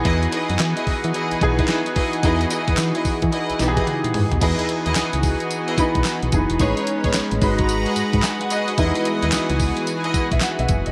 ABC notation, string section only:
X:1
M:4/4
L:1/16
Q:"Swing 16ths" 1/4=110
K:Elyd
V:1 name="String section"
[EGBd] z [EGBd] z2 [EGBd] z2 [EGBd] z2 [EGBd] z2 [EGBd] z | [EGBd] z [EGBd] z2 [EGBd] z2 [EGBd] z2 [EGBd] z4 | [EGBd] z2 [EGBd] z4 z [EGBd] z6 | [DGBc] z2 [DGBc] z4 z [FGBd] z4 [FGBd] z |
[EGBd] z2 [EGBd] z4 z [EGBd] z6 |]